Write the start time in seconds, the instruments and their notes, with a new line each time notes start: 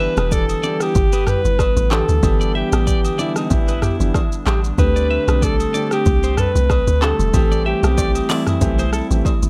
Already playing: analog synth pad D3 G3 B3 E4, grand piano E3 B3 D4 G4, alto saxophone B4
0.00 clean electric guitar E5
0.17 log drum bass E1, grand piano E3 B3 D4 G4, cross-stick, high agogo, shaker
0.32 alto saxophone A4, clean electric guitar D5, kick, shaker
0.49 high agogo, shaker
0.63 grand piano E3 B3 D4 G4, clean electric guitar D5, shaker
0.80 alto saxophone G4, cross-stick, high agogo, shaker
0.95 log drum bass G1, kick, shaker
1.13 clean electric guitar B4, high agogo, shaker
1.27 clean electric guitar G4, alto saxophone B4, cross-stick, mid tom, shaker
1.45 log drum bass G1, shaker
1.59 kick, cross-stick, high agogo, low woodblock, shaker
1.77 log drum bass A1, shaker
1.91 grand piano E3 B3 D4 G4, clean electric guitar G4, alto saxophone A4, clap, high agogo, shaker
2.09 log drum bass D2, shaker
2.23 log drum bass G1, grand piano E3 B3 D4 G4, analog synth pad D4, kick, high agogo, shaker
2.41 clean electric guitar D5, shaker
2.55 alto saxophone G4, clean electric guitar E5
2.72 log drum bass A1, grand piano E3 B3 D4 G4, cross-stick, high agogo, shaker
2.87 clean electric guitar D5, kick, shaker
3.05 high agogo, shaker
3.18 grand piano E3 B3 D4 G4, alto saxophone E4, clean electric guitar D5, shaker
3.36 alto saxophone E4, cross-stick, high agogo, shaker
3.50 log drum bass A1, grand piano E3 B3 D4 G4, kick, shaker
3.68 clean electric guitar B4, high agogo, shaker
3.82 clean electric guitar G4, cross-stick, mid tom, shaker
4.00 log drum bass G1, grand piano E3 B3 D4 G4, shaker
4.14 kick, cross-stick, high agogo, low woodblock, shaker
4.32 shaker
4.46 log drum bass A1, clean electric guitar G4, cross-stick, clap, high agogo, shaker
4.64 shaker
4.78 log drum bass D2, grand piano D3 A3 C4 G4, analog synth pad G3 A3 C4, alto saxophone B4, kick, high agogo, shaker
4.96 clean electric guitar D5, shaker
5.11 clean electric guitar E5
5.28 log drum bass B1, grand piano D3 A3 C4 G4, cross-stick, high agogo, shaker
5.42 alto saxophone A4, clean electric guitar D5, kick, shaker
5.60 high agogo, shaker
5.74 grand piano D3 A3 C4 G4, clean electric guitar D5, shaker
5.91 alto saxophone G4, cross-stick, high agogo, shaker
6.06 log drum bass C2, kick, shaker
6.23 clean electric guitar C5, high agogo, shaker
6.37 clean electric guitar A4, alto saxophone B4, cross-stick, mid tom, shaker
6.55 log drum bass C2, shaker
6.70 kick, cross-stick, high agogo, low woodblock, shaker
6.87 log drum bass D2, shaker
7.01 grand piano D3 A3 C4 G4, clean electric guitar A4, alto saxophone A4, clap, high agogo, shaker
7.19 log drum bass E1, shaker
7.33 log drum bass A1, grand piano E3 A3 C4 G4, analog synth pad C4 E4, kick, high agogo, shaker
7.52 clean electric guitar D5, shaker
7.66 alto saxophone G4, clean electric guitar E5
7.83 log drum bass B1, grand piano E3 A3 C4 G4, cross-stick, high agogo, shaker
7.98 clean electric guitar D5, kick, low woodblock, shaker
8.15 high agogo, shaker
8.29 grand piano E3 A3 C4 G4, alto saxophone E4, clean electric guitar D5, clap, open hi-hat, shaker
8.47 alto saxophone E4, cross-stick, mid tom, high agogo, shaker
8.61 log drum bass B1, grand piano E3 A3 C4 G4, kick, shaker
8.79 clean electric guitar C5, high agogo, shaker
8.93 clean electric guitar A4, cross-stick, shaker
9.10 log drum bass A1, grand piano E3 A3 C4 G4, shaker
9.25 kick, high agogo, low woodblock, shaker
9.43 log drum bass G1, shaker